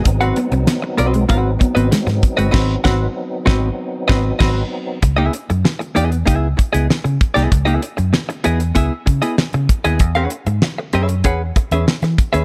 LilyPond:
<<
  \new Staff \with { instrumentName = "Hollow-body jazz guitar" } { \time 4/4 \key gis \minor \tempo 4 = 96 r16 <bis fis' b' fis''>16 r4 <bis fis' b' dis''>16 r16 <bis fis' b' fis''>16 r8 <bis fis' b' dis''>16 r8. <bis fis' b' dis''>16 | <bis fis' b' dis''>8 <bis fis' b' fis''>8 r8 <bis fis' b' dis''>8 r8 <bis fis' b' dis''>8 <bis fis' b' dis''>8 r8 | r16 <b e' gis' e''>16 r4 <b e' gis' dis''>16 r16 <b e' gis' e''>16 r8 <b e' gis' dis''>16 r8. <b e' gis' dis''>16 | r16 <b e' gis' e''>16 r4 <b e' gis' dis''>16 r16 <b e' gis' e''>16 r8 <b e' gis' dis''>16 r8. <b e' gis' dis''>16 |
r16 <cis' gis' b' fis''>16 r4 <cis' gis' b' e''>16 r16 <cis' gis' b' fis''>16 r8 <cis' gis' b' e''>16 r8. <cis' gis' b' e''>16 | }
  \new Staff \with { instrumentName = "Tonewheel organ" } { \time 4/4 \key gis \minor <fis b bis dis'>1~ | <fis b bis dis'>1 | r1 | r1 |
r1 | }
  \new Staff \with { instrumentName = "Clean electric guitar" } { \time 4/4 \key gis \minor r8 b16 bis16 b16 r8 gis16 r8 b16 b16 gis16 r8 gis16 | r1 | r1 | r1 |
r1 | }
  \new Staff \with { instrumentName = "Fingered electric bass" } { \clef bass \time 4/4 \key gis \minor gis,,8 r16 bis,,16 r8 b,,8 gis,,8 r16 gis,,16 r16 gis,16 r16 g,,16 | gis,,8 gis,,8 r8 gis,,8 r8 gis,,8 gis,,8 r8 | cis,8 r16 fis,16 r8 e,8 cis,8 r16 cis,16 r16 cis16 r16 bis,,16 | cis,8 r16 fis,16 r8 e,8 cis,16 r16 cis16 r8 cis16 r16 dis,16 |
e,8 r16 gis,16 r8 fis,8 e,8 r16 e,16 r16 e16 r16 dis,16 | }
  \new DrumStaff \with { instrumentName = "Drums" } \drummode { \time 4/4 <hh bd>16 hh16 hh16 hh16 <hh sn>8 hh16 hh16 <hh bd>8 <hh bd>16 hh16 <hh sn>16 <hh sn>16 <hh bd>16 hh16 | <cymc bd sn>8 <bd sn>8 r8 <bd sn>8 r8 <bd sn>8 <cymc bd sn>4 | <hh bd>8 hh16 hh16 sn16 hh16 hh16 hh16 <hh bd>8 <hh bd>16 hh16 sn16 hh16 <hh bd>16 <hh sn>16 | <hh bd>16 hh16 hh16 hh16 sn16 hh16 hh16 hh16 <hh bd>8 <hh bd>16 hh16 sn16 hh16 <hh bd>16 hh16 |
<hh bd>16 hh16 hh16 hh16 sn8 hh16 hh16 <hh bd>8 <hh bd>16 hh16 sn16 <hh sn>16 <hh bd>16 hh16 | }
>>